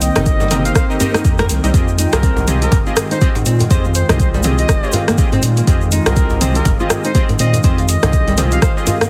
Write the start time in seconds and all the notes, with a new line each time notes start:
Already playing: D#3 A#3 C4 G5
0.01 D#5, open hi-hat, shaker
0.16 G1 C4 D#4 G4 A#4 D#5, cross-stick, closed hi-hat, mid tom, djembe slap, djembe tone, djembe bass, shaker
0.26 kick, closed hi-hat, shaker
0.40 G3, djembe tone, shaker
0.51 C4 D#4 G4 A#4 D#5, open hi-hat, mid tom, djembe slap, shaker
0.65 F5, closed hi-hat, shaker
0.75 C5 F5, kick, cross-stick, closed hi-hat, shaker
0.90 C4 D#4 G4 A#4 D#5, shaker
1.00 C4 D#4 G4 A#4 D#5, open hi-hat, djembe bass, shaker
1.14 D#4, cross-stick, open hi-hat, djembe tone, shaker
1.25 F2 C4 D#4 G4 A#4 D#5, kick, closed hi-hat, shaker
1.38 A#4, cross-stick, closed hi-hat, djembe tone, shaker
1.49 C2, open hi-hat, shaker
1.64 C2 G3 C4 D#4 G4 A#4 D#5, closed hi-hat, shaker
1.74 F2 D#3 G#3 C4 F4 G4 G#4 D#5, kick, closed hi-hat, shaker
1.88 shaker
1.99 D#4, open hi-hat, shaker
2.13 C2 C4 F4 G4 G#4 A#4 D#5, cross-stick, closed hi-hat, djembe slap, djembe tone, shaker
2.23 C4, kick, closed hi-hat, shaker
2.37 djembe tone, shaker
2.47 C4 F4 G4 G#4 D#5, open hi-hat, mid tom, shaker
2.62 G4 A#4, closed hi-hat, shaker
2.72 F1, kick, closed hi-hat, djembe slap, djembe bass, shaker
2.86 C4 F4 G4 G#4 D#5, shaker
2.96 cross-stick, open hi-hat, djembe tone, shaker
3.11 D#4 C5, closed hi-hat, shaker
3.21 C4 F4 G4 G#4 D#5, kick, closed hi-hat, shaker
3.35 G#2, closed hi-hat, djembe tone, shaker
3.46 A#2 C4, open hi-hat, shaker
3.59 closed hi-hat, djembe tone, shaker
3.71 F2 C4 F4 G4 G#4 C5 D#5, kick, closed hi-hat, shaker
3.85 F4, shaker
3.95 C5, open hi-hat, shaker
4.09 C2 C4 D#4 F4 G4 G#4 C5 D#5, cross-stick, closed hi-hat, mid tom, djembe slap, djembe tone, djembe bass, shaker
4.20 C5, kick, closed hi-hat, shaker
4.34 G3, djembe tone, shaker
4.43 C4 F4 G4 G#4 D#5, open hi-hat, mid tom, shaker
4.58 D#5, closed hi-hat, shaker
4.69 F1 C5, kick, cross-stick, closed hi-hat, shaker
4.83 C4 F4 G4 G#4 D#5, shaker
4.92 F4, open hi-hat, djembe bass, shaker
5.08 A#3, cross-stick, open hi-hat, djembe tone, shaker
5.18 C4 F4 G4 G#4 D#5, kick, closed hi-hat, shaker
5.32 G#2 C4, closed hi-hat, djembe tone, shaker
5.42 A#2, open hi-hat, shaker
5.57 A#3, closed hi-hat, shaker
5.67 F2 C4 F4 G4 G#4 D#5, kick, closed hi-hat, shaker
5.81 shaker
5.92 D#4, open hi-hat, shaker
6.06 C2 C4 F4 G4 G#4 A#4 D#5, cross-stick, closed hi-hat, djembe slap, djembe tone, shaker
6.16 C4, kick, closed hi-hat, shaker
6.30 djembe tone, shaker
6.41 C4 F4 G4 G#4 D#5, open hi-hat, mid tom, shaker
6.55 G4 A#4, closed hi-hat, shaker
6.65 F1, kick, closed hi-hat, djembe slap, djembe bass, shaker
6.80 C4 F4 G4 G#4 D#5, shaker
6.90 cross-stick, open hi-hat, djembe tone, shaker
7.04 D#4 C5, closed hi-hat, shaker
7.15 C4 F4 G4 G#4 D#5, kick, closed hi-hat, shaker
7.29 G#2, closed hi-hat, djembe tone, shaker
7.39 A#2 C4 D#5, open hi-hat, shaker
7.53 closed hi-hat, djembe tone, shaker
7.63 F2 C4 F4 G4 G#4 C5 D#5, kick, closed hi-hat, shaker
7.78 F4, closed hi-hat, shaker
7.89 D#5, open hi-hat, shaker
8.03 C2 C4 D#4 F4 G4 G#4 D#5, cross-stick, closed hi-hat, mid tom, djembe slap, djembe tone, djembe bass, shaker
8.13 kick, closed hi-hat, shaker
8.28 G3, closed hi-hat, djembe tone, shaker
8.37 C4 F4 G4 G#4 D#5, open hi-hat, mid tom, djembe slap, shaker
8.51 F5, closed hi-hat, shaker
8.62 C5 F5, kick, cross-stick, closed hi-hat, shaker
8.77 C4 F4 G4 G#4 D#5, shaker
8.87 F4, open hi-hat, djembe bass, shaker
9.01 A#3, cross-stick, open hi-hat, djembe tone, shaker